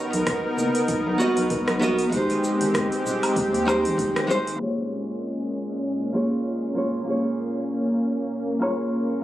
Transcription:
0.00 2.10 B3 medium
0.00 2.10 D#4 medium
0.00 1.16 F#4 medium
0.00 1.17 A#4 medium
0.00 2.10 A#4 medium
0.00 1.18 D#5 medium
0.13 0.22 B1 medium
0.13 open hi-hat soft
0.13 shaker soft
0.27 kick loud
0.27 cross-stick medium
0.27 open hi-hat medium
0.27 shaker soft
0.57 0.68 F#1 medium
0.57 shaker medium
0.75 open hi-hat soft
0.75 shaker soft
0.88 kick loud
0.88 open hi-hat medium
0.88 shaker soft
1.06 1.14 B1 loud
1.18 1.77 B3 medium
1.18 1.78 F#4 medium
1.18 1.79 A#4 medium
1.18 1.79 D#5 loud
1.18 shaker medium
1.37 1.55 B1 medium
1.37 open hi-hat medium
1.37 shaker soft
1.50 kick loud
1.50 open hi-hat medium
1.50 shaker soft
1.68 2.04 B1 medium
1.68 cross-stick medium
1.68 open hi-hat soft
1.79 2.04 B3 loud
1.79 2.05 F#4 medium
1.79 2.05 A#4 medium
1.79 2.06 D#5 loud
1.79 shaker medium
1.99 open hi-hat soft
1.99 shaker soft
2.09 2.23 G#1 medium
2.09 3.62 G#3 medium
2.09 3.63 D#4 medium
2.09 kick loud
2.09 open hi-hat medium
2.13 4.58 G#3 medium
2.13 4.58 C4 medium
2.13 4.58 G4 medium
2.13 3.65 G4 medium
2.13 3.66 C5 medium
2.13 shaker soft
2.30 open hi-hat soft
2.30 shaker soft
2.44 shaker medium
2.61 2.69 G#1 medium
2.61 open hi-hat soft
2.61 shaker soft
2.74 kick loud
2.74 cross-stick medium
2.74 open hi-hat medium
2.74 shaker soft
2.92 open hi-hat soft
2.92 shaker soft
3.05 3.16 D#1 medium
3.05 shaker medium
3.23 open hi-hat soft
3.23 low woodblock medium
3.23 shaker soft
3.36 kick medium
3.36 open hi-hat medium
3.36 shaker soft
3.53 3.86 D#2 medium
3.53 open hi-hat soft
3.53 shaker soft
3.65 4.25 G#3 medium
3.65 4.25 D#4 medium
3.65 4.26 G4 medium
3.65 4.27 C5 loud
3.65 low woodblock medium
3.65 shaker medium
3.85 4.02 G#1 medium
3.85 open hi-hat soft
3.85 shaker soft
3.98 kick loud
3.98 open hi-hat medium
3.98 shaker soft
4.16 4.52 G#1 loud
4.16 cross-stick medium
4.16 open hi-hat soft
4.27 4.52 G#3 medium
4.27 4.52 D#4 medium
4.27 4.53 G4 medium
4.27 4.53 C5 loud
4.27 shaker medium
4.47 open hi-hat soft
4.47 shaker soft
4.56 6.09 A#3 medium
4.56 6.11 F4 medium
4.60 9.24 A#2 medium
4.60 7.05 G#3 medium
4.60 9.24 C#4 medium
4.60 6.12 G#4 medium
4.60 6.13 C#5 medium
6.13 6.72 A#3 medium
6.13 6.73 F4 medium
6.13 6.73 G#4 medium
6.13 6.74 C#5 medium
6.74 6.99 A#3 medium
6.74 7.00 F4 medium
6.74 7.00 G#4 medium
6.74 7.01 C#5 medium
7.03 8.57 A#3 medium
7.03 9.24 A#3 medium
7.03 8.58 F4 medium
7.08 8.59 G#4 medium
7.08 8.60 C#5 medium
8.59 9.19 A#3 medium
8.59 9.20 F4 medium
8.59 9.21 G#4 medium
8.59 9.21 C#5 medium
8.59 low woodblock medium

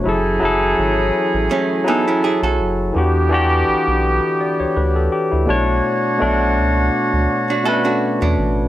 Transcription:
0.04 0.39 F#1 loud
0.04 2.55 E3 medium
0.04 0.39 F#3 medium
0.04 2.55 C#4 medium
0.04 0.39 E4 medium
0.04 2.55 G#4 medium
0.04 0.40 G#4 medium
0.09 0.41 A4 medium
0.40 0.75 F#1 medium
0.40 1.76 F#3 medium
0.40 1.77 E4 medium
0.40 1.78 G#4 medium
0.45 1.79 A4 medium
0.79 1.11 G#1 loud
1.34 1.49 A1 medium
1.51 1.85 A3 medium
1.51 1.85 C#4 medium
1.84 2.87 F#3 medium
1.84 2.06 B3 medium
1.84 2.06 D#4 medium
1.84 2.88 E4 medium
1.84 2.89 G#5 medium
1.89 2.89 A4 medium
2.08 2.23 C#4 medium
2.08 2.23 E4 medium
2.24 2.42 E4 medium
2.24 2.42 G#4 medium
2.43 2.61 B1 medium
2.43 2.93 F#4 medium
2.43 2.93 A4 medium
2.59 2.92 F#1 medium
2.93 3.64 E2 loud
2.93 5.08 D3 medium
2.93 3.28 E3 medium
2.93 5.08 B3 medium
2.93 3.29 D4 medium
2.93 3.29 F#4 medium
2.93 5.08 G4 medium
2.98 3.30 G4 medium
3.29 4.65 E3 medium
3.29 4.66 D4 medium
3.29 4.40 F#4 medium
3.34 4.41 G4 loud
3.68 3.76 B1 medium
3.88 4.20 B1 loud
4.41 4.59 D5 medium
4.60 4.67 D2 soft
4.60 4.75 C#5 medium
4.76 5.09 D2 loud
4.76 4.95 B4 medium
4.96 5.11 A4 medium
5.12 5.30 G4 medium
5.32 5.47 D2 medium
5.32 5.66 E4 medium
5.45 6.14 B2 medium
5.45 6.15 A3 medium
5.45 8.33 D4 medium
5.45 6.16 D4 medium
5.45 8.33 F#4 medium
5.45 8.33 C#5 medium
5.50 5.81 B1 loud
5.50 6.17 C#5 medium
6.18 6.59 B1 medium
6.18 7.55 B2 medium
6.18 7.55 A3 medium
6.18 7.56 D4 medium
6.23 7.57 F#4 medium
6.58 6.90 C#2 medium
7.14 7.28 D2 loud
7.50 7.65 D4 medium
7.50 7.65 F#4 medium
7.64 8.66 B2 medium
7.64 8.66 A3 medium
7.64 7.73 C#4 medium
7.64 7.84 F#4 medium
7.64 7.84 A4 medium
7.68 8.68 B4 medium
7.73 8.68 D4 medium
7.85 8.19 D4 medium
7.85 8.19 F#4 medium
8.22 8.37 E2 medium
8.22 8.68 B3 medium
8.22 8.68 D4 medium
8.39 8.68 A1 medium

